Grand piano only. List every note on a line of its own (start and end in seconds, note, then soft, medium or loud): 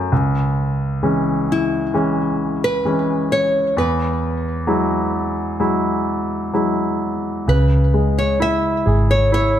0.00 0.11 F#2 medium
0.00 0.13 F#3 soft
0.00 0.14 A3 soft
0.00 0.14 C#4 soft
0.12 3.73 C#2 medium
1.03 1.91 E3 soft
1.03 1.91 G#3 soft
1.03 1.91 C#4 soft
1.94 2.82 E3 soft
1.94 2.83 G#3 soft
1.94 2.83 C#4 soft
2.85 3.74 E3 soft
2.85 3.74 G#3 soft
2.85 3.74 C#4 soft
3.77 7.45 E2 medium
4.67 5.58 F#3 soft
4.67 5.58 G#3 soft
4.67 5.58 E4 soft
5.60 6.52 F#3 soft
5.60 6.52 G#3 soft
5.60 6.52 E4 soft
6.53 7.45 F#3 soft
6.53 7.45 G#3 soft
6.53 7.46 E4 soft
7.47 9.60 C#3 medium
7.94 9.60 G#3 soft
8.40 9.31 E4 soft
8.86 9.60 G#4 soft
9.32 9.60 E4 soft